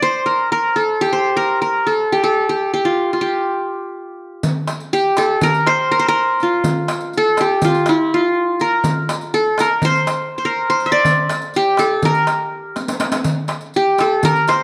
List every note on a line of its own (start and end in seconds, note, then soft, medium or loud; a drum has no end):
0.00 1.08 C5 medium
0.00 0.88 D5 medium
0.26 0.51 A#4 medium
0.52 0.82 A#4 medium
0.76 1.43 A4 medium
1.01 2.12 G4 medium
1.13 2.18 C5 medium
1.37 1.61 A#4 medium
1.62 1.93 A#4 medium
1.87 2.23 A4 medium
2.12 2.49 G4 medium
2.24 3.42 A4 medium
2.49 2.73 G4 medium
2.74 3.21 G4 medium
2.85 3.13 F4 medium
3.13 4.48 F4 soft
3.21 4.47 G4 medium
4.43 riq medium
4.43 darbuka dum medium
4.67 riq soft
4.67 darbuka tek medium
4.80 riq soft
4.93 6.19 G4 medium
4.93 riq soft
5.17 5.49 A4 medium
5.17 riq soft
5.17 darbuka tek medium
5.41 5.91 A#4 medium
5.41 riq medium
5.41 darbuka dum medium
5.54 riq soft
5.54 darbuka ka soft
5.67 5.99 C5 loud
5.67 darbuka tek medium
5.92 6.08 A#4 medium
5.99 7.05 C5 medium
6.08 7.24 A#4 loud
6.40 7.64 F4 medium
6.40 riq soft
6.40 darbuka ka soft
6.64 riq medium
6.64 darbuka dum medium
6.88 riq medium
6.88 darbuka tek medium
7.00 riq soft
7.13 riq soft
7.18 8.36 A4 medium
7.37 8.66 G4 medium
7.37 riq medium
7.37 darbuka tek medium
7.62 7.95 F4 medium
7.62 riq medium
7.62 darbuka dum medium
7.74 riq soft
7.74 darbuka ka soft
7.86 8.20 E4 medium
7.86 riq soft
7.86 darbuka tek medium
8.14 9.49 F4 medium
8.60 9.40 A#4 medium
8.60 riq soft
8.60 darbuka ka soft
8.84 riq medium
8.84 darbuka dum medium
9.09 riq medium
9.09 darbuka tek medium
9.21 riq soft
9.34 9.66 A4 medium
9.34 riq soft
9.58 10.45 A#4 medium
9.58 riq medium
9.58 darbuka tek medium
9.82 10.38 C5 loud
9.82 riq medium
9.82 darbuka dum medium
9.95 riq soft
9.95 darbuka ka soft
10.07 riq soft
10.07 darbuka tek medium
10.38 10.69 C5 soft
10.45 11.58 A#4 medium
10.70 11.75 C5 medium
10.80 riq soft
10.80 darbuka ka soft
10.86 11.79 E5 medium
10.92 11.90 D5 medium
11.05 riq medium
11.05 darbuka dum medium
11.29 riq medium
11.29 darbuka tek medium
11.42 riq soft
11.42 darbuka ka soft
11.54 12.82 G4 medium
11.54 riq soft
11.54 darbuka ka soft
11.77 12.11 A4 medium
11.77 riq soft
11.77 darbuka tek medium
12.03 13.19 A#4 loud
12.03 riq medium
12.03 darbuka dum medium
12.15 riq soft
12.27 riq soft
12.27 darbuka tek medium
12.76 riq soft
12.76 darbuka tek soft
12.88 riq medium
12.88 darbuka ka medium
13.00 riq medium
13.00 darbuka tek medium
13.12 riq medium
13.12 darbuka ka medium
13.24 riq medium
13.24 darbuka dum medium
13.48 riq medium
13.48 darbuka tek medium
13.61 riq soft
13.74 14.63 G4 medium
13.74 riq soft
13.98 14.31 A4 medium
13.98 riq soft
13.98 darbuka tek medium
14.23 14.63 A#4 loud
14.23 riq medium
14.23 darbuka dum medium
14.36 riq soft
14.36 darbuka ka soft
14.47 14.63 C5 medium
14.47 riq medium
14.47 darbuka tek medium